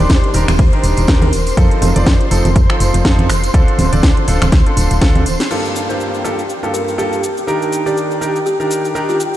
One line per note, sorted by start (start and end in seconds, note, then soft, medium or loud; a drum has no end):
0.00 0.32 D#3 medium
0.00 0.32 D4 medium
0.00 0.32 D#4 medium
0.00 0.32 G4 medium
0.00 5.52 C5 medium
0.00 0.32 D5 medium
0.00 5.52 C6 medium
0.09 0.21 D#2 medium
0.09 kick loud
0.09 snare loud
0.09 closed hi-hat medium
0.09 tambourine soft
0.24 closed hi-hat soft
0.34 0.46 D#1 medium
0.34 0.48 D#3 medium
0.34 0.48 D4 medium
0.34 0.48 D#4 medium
0.34 0.48 G4 medium
0.34 0.48 A#4 medium
0.34 open hi-hat loud
0.34 tambourine medium
0.48 0.60 D#1 medium
0.48 0.55 C5 medium
0.48 finger snap medium
0.48 closed hi-hat soft
0.48 tambourine medium
0.48 high conga medium
0.59 0.70 D#2 loud
0.59 0.68 C5 medium
0.59 kick loud
0.59 closed hi-hat medium
0.59 tambourine soft
0.73 1.06 D#3 medium
0.73 1.06 D4 medium
0.73 1.06 D#4 medium
0.73 1.06 G4 medium
0.73 1.06 A#4 medium
0.73 closed hi-hat soft
0.83 0.95 D#1 medium
0.83 open hi-hat loud
0.83 tambourine medium
0.97 1.06 D#1 medium
0.97 closed hi-hat medium
0.97 tambourine soft
1.07 1.34 D#2 medium
1.07 1.28 D#3 medium
1.07 1.28 D4 medium
1.07 1.28 D#4 medium
1.07 1.28 G4 medium
1.07 1.28 A#4 loud
1.07 kick loud
1.07 snare loud
1.07 closed hi-hat medium
1.07 tambourine soft
1.22 1.63 A#4 medium
1.22 closed hi-hat soft
1.22 high conga medium
1.33 1.53 D#1 medium
1.33 open hi-hat loud
1.33 tambourine medium
1.47 open hi-hat medium
1.47 tambourine soft
1.57 1.69 F2 loud
1.57 1.93 F3 medium
1.57 1.92 C4 medium
1.57 1.92 D#4 medium
1.57 1.92 F4 medium
1.57 1.92 A4 loud
1.57 kick loud
1.57 closed hi-hat medium
1.71 closed hi-hat soft
1.82 1.93 F1 loud
1.82 open hi-hat loud
1.82 tambourine medium
1.82 high conga medium
1.96 2.04 F1 medium
1.96 2.29 F3 medium
1.96 2.29 C4 medium
1.96 2.29 D#4 medium
1.96 2.29 F4 medium
1.96 2.29 D5 medium
1.96 closed hi-hat medium
1.96 tambourine soft
2.06 2.18 F2 medium
2.06 kick loud
2.06 snare loud
2.06 closed hi-hat medium
2.06 tambourine soft
2.21 closed hi-hat soft
2.31 2.42 F1 medium
2.31 2.45 F3 medium
2.31 2.45 C4 medium
2.31 2.45 D#4 medium
2.31 2.45 F4 medium
2.31 2.45 A4 medium
2.31 open hi-hat loud
2.31 tambourine medium
2.45 2.57 F1 medium
2.45 closed hi-hat soft
2.45 tambourine medium
2.45 high conga medium
2.56 2.67 F2 loud
2.56 kick loud
2.56 closed hi-hat medium
2.56 tambourine soft
2.70 3.02 F3 medium
2.70 3.02 C4 medium
2.70 3.02 D#4 medium
2.70 3.02 F4 medium
2.70 3.02 A4 medium
2.70 finger snap medium
2.70 closed hi-hat soft
2.80 2.91 F1 medium
2.80 open hi-hat loud
2.80 tambourine medium
2.94 3.03 F1 medium
2.94 closed hi-hat medium
2.94 tambourine soft
3.05 3.31 F2 medium
3.05 3.25 F3 medium
3.05 3.25 C4 medium
3.05 3.25 D#4 medium
3.05 3.25 F4 medium
3.05 3.25 A4 loud
3.05 kick loud
3.05 snare loud
3.05 closed hi-hat medium
3.05 tambourine soft
3.19 closed hi-hat soft
3.19 high conga medium
3.29 3.50 F1 medium
3.29 finger snap medium
3.29 open hi-hat loud
3.29 tambourine medium
3.43 closed hi-hat medium
3.43 tambourine medium
3.54 3.65 D2 loud
3.54 3.89 D3 medium
3.54 3.89 C4 medium
3.54 3.89 D4 medium
3.54 3.89 F4 medium
3.54 3.89 A4 loud
3.54 kick loud
3.54 closed hi-hat medium
3.54 tambourine soft
3.68 closed hi-hat soft
3.79 3.90 D1 loud
3.79 open hi-hat loud
3.79 tambourine medium
3.79 high conga loud
3.93 4.01 D1 loud
3.93 4.25 D3 medium
3.93 4.25 C4 medium
3.93 4.25 D4 medium
3.93 4.25 F4 medium
3.93 4.25 D5 medium
3.93 closed hi-hat medium
3.93 tambourine medium
4.03 4.14 D2 medium
4.03 kick loud
4.03 snare loud
4.03 closed hi-hat medium
4.17 closed hi-hat soft
4.28 4.39 D1 medium
4.28 4.42 D3 medium
4.28 4.42 C4 medium
4.28 4.42 D4 medium
4.28 4.42 F4 medium
4.28 4.42 A4 medium
4.28 open hi-hat loud
4.28 tambourine medium
4.42 4.54 D1 medium
4.42 finger snap medium
4.42 closed hi-hat medium
4.42 tambourine medium
4.42 high conga medium
4.52 4.64 D2 loud
4.52 kick loud
4.52 snare medium
4.52 closed hi-hat medium
4.52 tambourine soft
4.66 4.99 D3 medium
4.66 4.99 C4 medium
4.66 4.99 D4 medium
4.66 4.99 F4 medium
4.66 4.99 A4 medium
4.66 closed hi-hat soft
4.77 4.88 D1 loud
4.77 open hi-hat loud
4.77 tambourine medium
4.90 5.03 D1 medium
4.90 closed hi-hat medium
4.90 tambourine soft
5.02 5.28 D2 loud
5.02 5.22 D3 medium
5.02 5.22 C4 medium
5.02 5.22 D4 medium
5.02 5.22 F4 medium
5.02 5.22 A4 loud
5.02 kick loud
5.02 snare loud
5.02 closed hi-hat medium
5.15 closed hi-hat soft
5.15 high conga medium
5.26 5.37 D1 medium
5.26 open hi-hat loud
5.26 tambourine medium
5.40 snare medium
5.40 open hi-hat medium
5.40 tambourine soft
5.51 5.86 G2 medium
5.51 5.86 A#3 medium
5.51 5.86 F4 medium
5.51 5.86 G4 medium
5.51 9.37 G4 medium
5.51 5.86 A4 medium
5.51 9.37 G5 medium
5.51 crash medium
5.51 shaker soft
5.65 shaker soft
5.76 shaker medium
5.89 6.22 G2 medium
5.89 6.22 A#3 medium
5.89 6.22 F4 medium
5.89 6.22 G4 medium
5.89 6.22 C5 medium
5.89 shaker soft
6.00 shaker soft
6.14 shaker soft
6.24 6.38 G2 medium
6.24 6.38 A#3 medium
6.24 6.38 F4 medium
6.24 6.38 G4 medium
6.24 6.38 A4 medium
6.24 shaker medium
6.39 shaker soft
6.50 shaker soft
6.63 6.96 G2 medium
6.63 6.96 A#3 medium
6.63 6.96 F4 medium
6.63 6.96 G4 medium
6.63 6.96 A4 medium
6.63 shaker soft
6.74 6.89 A#4 medium
6.74 shaker medium
6.88 shaker soft
6.98 7.19 G2 medium
6.98 7.19 A#3 medium
6.98 7.19 F4 medium
6.98 7.19 G4 medium
6.98 7.13 G4 medium
6.98 7.19 A4 medium
6.98 shaker soft
7.13 shaker soft
7.23 shaker medium
7.37 shaker soft
7.47 7.83 D#3 medium
7.47 7.83 D4 medium
7.47 7.83 D#4 medium
7.47 7.83 G4 medium
7.47 7.83 A#4 medium
7.47 shaker soft
7.62 shaker soft
7.73 shaker medium
7.86 8.19 D#3 medium
7.86 8.19 D4 medium
7.86 8.19 D#4 medium
7.86 8.19 G4 medium
7.86 7.98 G4 medium
7.86 8.19 D5 medium
7.86 shaker soft
7.97 shaker soft
8.11 shaker soft
8.21 8.35 D#3 medium
8.21 8.35 D4 medium
8.21 8.35 D#4 medium
8.21 8.35 G4 medium
8.21 8.35 A#4 medium
8.21 shaker medium
8.36 shaker soft
8.46 9.06 G4 medium
8.46 shaker soft
8.60 8.92 D#3 medium
8.60 8.92 D4 medium
8.60 8.92 D#4 medium
8.60 8.92 G4 medium
8.60 8.92 A#4 medium
8.60 shaker soft
8.71 shaker medium
8.85 shaker soft
8.95 9.15 D#3 medium
8.95 9.15 D4 medium
8.95 9.15 D#4 medium
8.95 9.15 G4 medium
8.95 9.15 A#4 medium
8.95 shaker soft
9.09 9.37 F4 medium
9.09 shaker soft
9.20 shaker medium